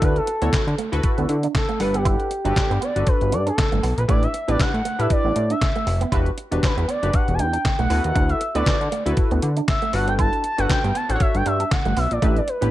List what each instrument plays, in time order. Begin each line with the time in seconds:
Already playing: analog polysynth E4 F#4 A4 B4
0.02 analog synth bass D2, clean electric guitar D4, analog synth lead B4, kick, closed hi-hat
0.16 analog synth lead A4, closed hi-hat
0.27 muted clean electric guitar stroke, closed hi-hat
0.41 analog synth bass D2, clean electric guitar B3, analog polysynth E4 F#4 A4 C#5, closed hi-hat
0.53 kick, snare, clap, closed hi-hat
0.67 analog synth bass D3, closed hi-hat
0.78 clean electric guitar A3, closed hi-hat
0.92 analog synth bass D2, analog polysynth E4 F#4 A4 B4, closed hi-hat
1.03 kick, closed hi-hat
1.18 analog synth bass D2, clean electric guitar B3, closed hi-hat
1.29 analog synth bass D3, muted clean electric guitar stroke, closed hi-hat
1.43 clean electric guitar D4, closed hi-hat
1.55 analog synth lead A4, kick, snare, clap, closed hi-hat
1.69 clean electric guitar A3, closed hi-hat
1.80 analog synth bass G1, analog polysynth D4 A4 B4 F#5, analog synth lead B4, muted clean electric guitar stroke, open hi-hat
1.94 clean electric guitar B3, analog synth lead G4, closed hi-hat
2.05 clean electric guitar E4, kick, closed hi-hat
2.20 closed hi-hat
2.31 muted clean electric guitar stroke, closed hi-hat
2.45 analog synth bass G1, analog polysynth D4 F#4 A4 B4, clean electric guitar D4, analog synth lead G4, closed hi-hat
2.56 muted clean electric guitar stroke, kick, snare, clap, closed hi-hat
2.70 analog synth bass G2, clean electric guitar B3, closed hi-hat
2.81 clean electric guitar B3, analog synth lead D5, closed hi-hat
2.96 analog synth bass G1, analog polysynth D4 F#4 A4 B4, closed hi-hat
3.07 analog synth lead B4, muted clean electric guitar stroke, kick, closed hi-hat
3.21 analog synth bass G1, closed hi-hat
3.32 analog synth bass G2, clean electric guitar D4, analog synth lead D5, closed hi-hat
3.47 clean electric guitar D4, analog synth lead A4, closed hi-hat
3.58 muted clean electric guitar stroke, kick, snare, clap, closed hi-hat
3.72 analog synth bass G1, clean electric guitar A3, closed hi-hat
3.83 analog synth bass B1, clean electric guitar B3, open hi-hat
3.98 analog synth bass A#1, analog synth lead B4, closed hi-hat
4.08 analog synth bass A1, clean electric guitar A3, analog polysynth D4 E4 G4 B4, analog synth lead D5, kick, closed hi-hat
4.23 analog synth lead E5, closed hi-hat
4.34 muted clean electric guitar stroke, closed hi-hat
4.48 analog synth bass A1, clean electric guitar B3, analog polysynth D4 E4 G4 B4, analog synth lead D5, closed hi-hat
4.60 analog synth lead F#5, kick, snare, clap, closed hi-hat
4.74 analog synth bass A2, closed hi-hat
4.85 clean electric guitar A3, closed hi-hat
4.99 analog synth bass A2, analog polysynth D4 E4 G4 B4, analog synth lead E5, closed hi-hat
5.10 analog synth lead D5, kick, closed hi-hat
5.25 analog synth bass A1, clean electric guitar B3
5.36 analog synth bass A2, muted clean electric guitar stroke, closed hi-hat
5.50 clean electric guitar D4, analog synth lead E5, closed hi-hat
5.62 kick, snare, clap, closed hi-hat
5.76 clean electric guitar A3, closed hi-hat
5.87 analog synth bass F1, muted clean electric guitar stroke, open hi-hat
6.01 clean electric guitar B3, closed hi-hat
6.12 analog synth bass E1, analog polysynth D4 F#4 G4 B4, clean electric guitar E4, kick, closed hi-hat
6.26 closed hi-hat
6.38 muted clean electric guitar stroke, closed hi-hat
6.51 analog synth bass E1, analog polysynth D4 F#4 G4 B4, clean electric guitar D4, closed hi-hat
6.63 analog synth lead B4, muted clean electric guitar stroke, kick, snare, clap, closed hi-hat
6.77 analog synth bass E2, clean electric guitar B3, closed hi-hat
6.88 clean electric guitar B3, analog synth lead D5, closed hi-hat
7.02 analog synth bass F#1, analog polysynth D4 F#4 G4 B4, closed hi-hat
7.13 analog synth lead F#5, muted clean electric guitar stroke, kick, closed hi-hat
7.28 analog synth bass E1, closed hi-hat
7.34 analog synth lead A5
7.39 analog synth bass E2, clean electric guitar D4, analog synth lead G5, closed hi-hat
7.53 clean electric guitar D4, closed hi-hat
7.65 muted clean electric guitar stroke, kick, snare, clap, closed hi-hat
7.79 analog synth bass B1, clean electric guitar A3, analog synth lead F#5, closed hi-hat
7.90 analog synth bass D2, clean electric guitar B3, analog polysynth E4 F#4 A4 B4, open hi-hat
8.04 analog synth bass D#2, analog synth lead F#5, closed hi-hat
8.16 analog synth bass D2, clean electric guitar D4, kick, closed hi-hat
8.29 analog synth lead E5, closed hi-hat
8.41 muted clean electric guitar stroke, closed hi-hat
8.55 analog synth bass D2, clean electric guitar B3, analog polysynth E4 F#4 A4 B4, analog synth lead D5, closed hi-hat
8.66 analog synth bass D3, kick, snare, clap, closed hi-hat
8.81 analog synth bass D3, closed hi-hat
8.92 clean electric guitar A3, closed hi-hat
9.06 analog synth bass D2, analog polysynth E4 F#4 A4 B4, closed hi-hat
9.17 kick, closed hi-hat
9.31 analog synth bass D2, clean electric guitar B3, closed hi-hat
9.42 analog synth bass D3, muted clean electric guitar stroke, closed hi-hat
9.57 clean electric guitar D4, closed hi-hat
9.68 analog synth lead E5, kick, snare, clap, closed hi-hat
9.82 clean electric guitar A3, closed hi-hat
9.93 analog synth bass G1, analog polysynth D4 F#4 A4 B4, analog synth lead F#5, muted clean electric guitar stroke, open hi-hat
10.08 clean electric guitar B3, analog synth lead G5, closed hi-hat
10.19 clean electric guitar E4, analog synth lead A5, kick, closed hi-hat
10.33 closed hi-hat
10.44 analog synth lead A5, muted clean electric guitar stroke, closed hi-hat
10.58 analog synth bass G1, analog polysynth D4 F#4 A4 B4, clean electric guitar D4, analog synth lead F#5, closed hi-hat
10.70 analog synth lead G5, muted clean electric guitar stroke, kick, snare, clap, closed hi-hat
10.84 analog synth bass G2, clean electric guitar B3, closed hi-hat
10.95 clean electric guitar B3, analog synth lead A5, closed hi-hat
11.09 analog synth bass A1, analog polysynth D4 F#4 A4 C5, analog synth lead F#5, closed hi-hat
11.16 analog polysynth C#5
11.20 analog synth lead E5, muted clean electric guitar stroke, kick, closed hi-hat
11.35 analog synth bass G1, analog synth lead G5, closed hi-hat
11.46 analog synth bass G2, clean electric guitar D4, analog synth lead E5, closed hi-hat
11.60 clean electric guitar D4, closed hi-hat
11.71 analog synth lead F#5, muted clean electric guitar stroke, kick, snare, clap, closed hi-hat
11.85 analog synth bass G1, clean electric guitar A3, closed hi-hat
11.97 analog synth bass B1, clean electric guitar B3, analog synth lead E5, open hi-hat
12.11 analog synth bass A#1, analog synth lead D5, closed hi-hat
12.22 analog synth bass A1, clean electric guitar A3, analog polysynth D4 E4 G4 B4, analog synth lead E5, kick, closed hi-hat
12.36 analog synth lead D5, closed hi-hat
12.48 analog synth lead B4, muted clean electric guitar stroke, closed hi-hat
12.61 analog synth bass A1, clean electric guitar B3, analog polysynth D4 E4 G4 B4, closed hi-hat